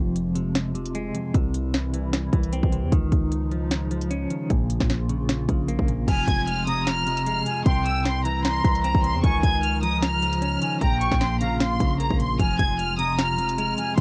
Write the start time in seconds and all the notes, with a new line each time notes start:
Already playing: F1 F2 C3 F3 G#3 F4
0.16 closed hi-hat
0.35 C3, closed hi-hat
0.55 snare, closed hi-hat
0.75 C3, closed hi-hat
0.86 closed hi-hat
0.95 G#3, closed hi-hat
1.15 F2, closed hi-hat
1.34 C2 C3 E3 G3 E4, kick, closed hi-hat
1.54 closed hi-hat
1.74 snare, closed hi-hat
1.94 E3, closed hi-hat
2.13 snare, closed hi-hat
2.33 C2 E3, kick, closed hi-hat
2.43 closed hi-hat
2.53 C4, closed hi-hat
2.63 C2, kick
2.72 C3, closed hi-hat
2.83 E2
2.92 C#2 C#3 D#3 F3 G#3 D#4, kick, closed hi-hat
3.12 C#2, kick, closed hi-hat
3.32 closed hi-hat
3.51 F3, closed hi-hat
3.71 snare, closed hi-hat
3.91 F3, closed hi-hat
4.01 closed hi-hat
4.11 C#4, closed hi-hat
4.30 D#3, closed hi-hat
4.50 A#1 A#2 A#3 F4, kick, closed hi-hat
4.70 closed hi-hat
4.80 A#1, kick, snare
4.90 snare, closed hi-hat
5.09 C#3, closed hi-hat
5.29 snare, closed hi-hat
5.49 A#1 C#3, kick, closed hi-hat
5.68 A#3, closed hi-hat
5.79 A#1, kick
5.88 A#2, closed hi-hat
6.08 F1 F2 C3 F3 G#3 F4 G#5 F6, kick, closed hi-hat, crash
6.27 F1 G#6, kick, closed hi-hat
6.47 F6, closed hi-hat
6.67 C3 A#5 D#6, closed hi-hat
6.87 F6, snare, closed hi-hat
7.06 C3, closed hi-hat
7.17 closed hi-hat
7.26 G#3 F6, closed hi-hat
7.46 F2 G#5, closed hi-hat
7.65 C2 C3 E3 G3 E4 G5 C6, kick, closed hi-hat
7.86 E6, closed hi-hat
8.05 C6, snare, closed hi-hat
8.24 E3 A#5, closed hi-hat
8.45 C6, snare, closed hi-hat
8.64 C2 E3, kick, closed hi-hat
8.75 closed hi-hat
8.84 C4 A#5, closed hi-hat
8.95 C2, kick
9.04 C3 C6, closed hi-hat
9.14 E2
9.23 C#2 C#3 D#3 F3 G#3 D#4 G#5 C#6, kick, closed hi-hat
9.43 C#2 G#6, kick, closed hi-hat
9.63 F6, closed hi-hat
9.83 F3 A#5 D#6, closed hi-hat
10.03 F6, snare, closed hi-hat
10.22 F3, closed hi-hat
10.33 closed hi-hat
10.42 C#4 F6, closed hi-hat
10.62 D#3 G#5, closed hi-hat
10.81 A#1 A#2 A#3 F4 G5 A#5, kick, closed hi-hat
11.01 C#6, closed hi-hat
11.12 A#1, kick, snare
11.21 C6, snare, closed hi-hat
11.40 C#3 F5 A#5, closed hi-hat
11.60 C6, snare, closed hi-hat
11.80 A#1 C#3, kick, closed hi-hat
12.00 A#3 A#5, closed hi-hat
12.11 A#1, kick
12.20 A#2 C6, closed hi-hat
12.39 F1 F2 C3 G#3 F4 G#5 F6, kick, closed hi-hat
12.59 F1 G#6, kick, closed hi-hat
12.79 F6, closed hi-hat
12.98 C3 A#5 D#6, closed hi-hat
13.18 F6, snare, closed hi-hat
13.38 C3, closed hi-hat
13.49 closed hi-hat
13.58 G#3 F6, closed hi-hat
13.78 F2 G#5, closed hi-hat
13.97 C2 C3 E3 G3 E4 C6, kick, closed hi-hat